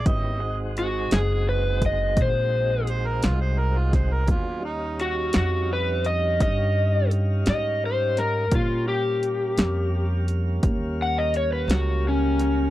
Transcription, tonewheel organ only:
\new Staff \with { instrumentName = "Tonewheel organ" } { \time 12/8 \key ees \dorian \tempo 4. = 57 <ces' des' fes' g'>8 <aes c' ees' ges'>1~ <aes c' ees' ges'>4. | <ges ces' d' aes'>8 <g des' ees' f''>1~ <g des' ees' f''>4. | <g bes des' f''>1. | }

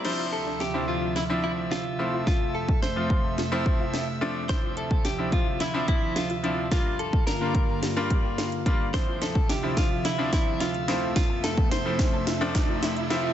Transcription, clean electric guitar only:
\new Staff \with { instrumentName = "Clean electric guitar" } { \time 4/4 \key d \minor \tempo 4 = 108 c''8 a'8 g'8 f'8 e'8 e'8 f'4 | f'8 a'8 c''4 r2 | c''8 a'8 g'8 f'8 e'8 e'8 f'4 | f'8 a'8 bes'4 r2 |
c''8 a'8 g'8 f'8 e'8 e'8 f'4 | f'8 a'8 c''4 r2 | }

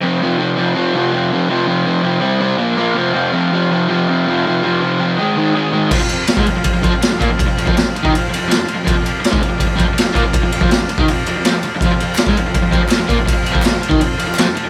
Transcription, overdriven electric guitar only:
\new Staff \with { instrumentName = "Overdriven electric guitar" } { \clef bass \time 4/4 \key f \mixolydian \tempo 4 = 163 <f, c f>8 <f, c f>8 <f, c f>8 <f, c f>8 <f, c f>8 <f, c f>8 <f, c f>8 <f, c f>8 | <f, c f>8 <f, c f>8 <f, c f>8 <f, c f>8 <c g c'>8 <c g c'>8 <bes, f bes>8 <bes, f bes>8 | <f, c f>8 <f, c f>8 <f, c f>8 <f, c f>8 <f, c f>8 <f, c f>8 <f, c f>8 <f, c f>8 | <f, c f>8 <f, c f>8 <f, c f>8 <f, c f>8 <aes, ees aes>8 <aes, ees aes>8 <aes, ees aes>8 <aes, ees aes>8 |
<f, f>16 f,16 f,8 r16 <aes, aes>16 f,16 f,16 f,16 f,16 <f, f>16 f,16 r16 f,16 <bes, bes>16 f,16 | r16 f,16 f,16 <f, f>16 f,16 f,16 r16 <ees ees'>16 f,8 f,16 f,16 <f, f>16 f,16 r16 f,16 | <f, f>16 f,16 f,8 r16 <aes, aes>16 f,16 f,16 f,16 f,16 <f, f>16 f,16 r16 f,16 <bes, bes>16 f,16 | r16 f,16 f,16 <f, f>16 f,16 f,16 r16 <ees ees'>16 f,8 f,16 f,16 <f, f>16 f,16 r16 f,16 |
<f, f>16 f,16 f,8 r16 <aes, aes>16 f,16 f,16 f,16 f,16 <f, f>16 f,16 r16 f,16 <bes, bes>16 f,16 | r16 f,16 f,16 <f, f>16 f,16 f,16 r16 <ees ees'>16 f,8 f,16 f,16 <f, f>16 f,16 r16 f,16 | }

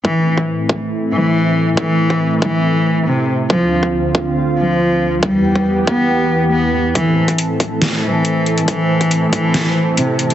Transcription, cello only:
\new Staff \with { instrumentName = "Cello" } { \clef bass \time 4/4 \key a \minor \tempo 4 = 139 e8 r2 e4. | e4. e4. c8 r8 | f8 r2 f4. | g4. b4. b8 r8 |
e8 r2 e4. | e4. e4. c8 r8 | }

